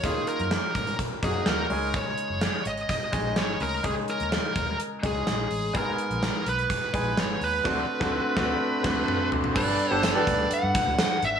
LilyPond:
<<
  \new Staff \with { instrumentName = "Lead electric guitar" } { \time 4/4 \key cis \mixolydian \tempo 4 = 126 gis'8 ais'4. r8 gis'8 ais'4 | cis''4. dis''8 dis''4 cis''8 ais'8 | gis'8 ais'4. r8 gis'4. | ais'4. b'4. cis''8 b'8~ |
b'2.~ b'8 r8 | \key g \major d''4 d''4 fis''4. e''8 | }
  \new Staff \with { instrumentName = "Grand piano" } { \time 4/4 \key cis \mixolydian <ais cis' dis' eis'>4~ <ais cis' dis' eis'>16 r4 r16 <ais cis' dis' fis'>4 <gis cis' dis' gis'>8~ | <gis cis' dis' gis'>4 r4. <gis cis' dis' gis'>4 r8 | <gis cis' dis' gis'>4~ <gis cis' dis' gis'>16 r4 r16 <gis cis' dis' gis'>4 r8 | <gis b dis' gis'>4~ <gis b dis' gis'>16 r4 r16 <gis b dis' gis'>4 r8 |
<d a c' d' fis'>8 r16 <d a c' d' fis'>8 r16 <a c' d' fis'>8 r8 <a c' d' fis'>8 r4 | \key g \major <b d' g' a' b'>8 r16 <b d' g' a' b'>16 r16 <b d' g' a' b'>4~ <b d' g' a' b'>16 r4. | }
  \new Staff \with { instrumentName = "Grand piano" } { \clef bass \time 4/4 \key cis \mixolydian dis4. r2 cis8~ | cis4 r2 r8 cis8~ | cis4 r2. | gis,4. r2 r8 |
r1 | \key g \major g,4. r2 r8 | }
  \new Staff \with { instrumentName = "Fingered electric bass" } { \clef bass \time 4/4 \key cis \mixolydian dis,16 r8 fis,8 r16 gis,8 r8 fis,8 dis,8 cis,8~ | cis,16 r8 fis,,8 r16 gis,,8 r8 ais,,8 gis,,8 d,8 | cis,16 r8 dis,8 r16 dis,8 r8 cis,8 ais,,8 a,,8 | gis,,16 r8 ais,,8 r16 b,,8 r8 ais,,8 gis,,8 dis,8 |
d,8 r16 d,8 r16 d,8 r8 d,8 r4 | \key g \major g,,8 r16 g,,8 r16 d,8 r16 g,16 r16 d,16 r8 aes,,8 | }
  \new DrumStaff \with { instrumentName = "Drums" } \drummode { \time 4/4 <hh bd>8 hh16 hh16 <hh sn>8 <hh bd>16 hh16 <hh bd>8 <hh bd>8 <hh sn>8 hho8 | <hh bd>8 hh8 <hh sn>8 hh16 hh16 <hh bd>8 <hh bd>8 <hh sn>8 hho8 | <hh bd>8 hh16 hh16 <hh sn>8 <hh bd>8 hh8 <hh bd>8 <hh sn>8 hho8 | <hh bd>8 hh16 hh16 <hh sn>8 hh16 hh16 <hh bd>8 <hh bd>8 <hh sn>8 hho8 |
<cymc bd sn>8. <bd sn>16 r8 <bd sn>8 r8 <cymc bd sn>8 toml8 tomfh16 tomfh16 | <cymc bd>8 hh8 <hh sn tamb>8 <hh bd>8 hh8 <hh bd>8 <hh sn tamb>8 hh8 | }
>>